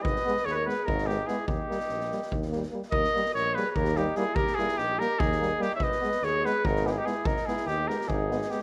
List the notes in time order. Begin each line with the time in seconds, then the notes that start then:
0.02 G#1 B4 D#5, kick
0.16 snare
0.24 G#3 B3, snare
0.37 snare
0.45 D#2 G#4 C#5, snare
0.51 G#4 A#4 B4 C#5
0.66 G#3 B3 G#4 B4, snare
0.85 G#1 D#4 A#4, kick
0.98 snare
1.06 G#3 B3 D#4 G4, snare
1.26 G#3 B3 E4 G#4, snare
1.47 D#2 D#4 G4, kick
1.69 G3 A#3, snare
1.80 snare
1.89 A#1, snare
2.00 snare
2.11 G3 A#3, snare
2.22 snare
2.32 D#2, kick
2.42 snare
2.51 A#3, snare
2.56 G3
2.63 snare
2.72 G3 A#3
2.83 snare
2.91 D#2 A#4 D#5, kick
3.04 snare
3.13 G3 A#3, snare
3.25 snare
3.33 A#1 A#4 C#5, snare
3.55 G3 A#3 G#4 B4, snare
3.68 G#4 B4
3.75 D#2 G4 A#4, kick
3.85 snare
3.96 G3 A#3 D#4 G4, snare
4.15 G3 A#3 E4 G#4, snare
4.35 D#2 G4 A#4, kick
4.47 snare
4.55 G3 A#3 G#4, snare
4.59 E4
4.68 snare
4.77 A#1 D#4 G4, snare
4.98 G3 A#3 G4 A#4, snare
5.19 D#2 D#4 G#4, kick
5.32 snare
5.41 G3 A#3, snare
5.59 G3 A#3 D#4 G4, snare
5.75 C#5 E5
5.80 G#1 B4 D#5, kick
5.92 snare
6.01 G#3 B3, snare
6.11 snare
6.22 D#2 G#4 C#5, snare
6.44 G#3 B3 G#4 B4, snare
6.63 G#1 D#4 A#4, kick
6.76 snare
6.83 G#3 B3 D#4 G4, snare
6.91 E4 G#4
6.98 D#4 G4
7.04 G#3 B3 E4 G#4, snare
7.24 G#1 D#4 A#4, kick
7.37 snare
7.46 G#3 B3 E4 G#4, snare
7.57 snare
7.66 D#2 D#4 G4, snare
7.88 G#3 B3 G4 A#4, snare
8.01 snare
8.08 G#1 D#4 G#4, kick
8.30 G#3 B3, snare
8.42 snare
8.49 G#3 B3 D#4 G4, snare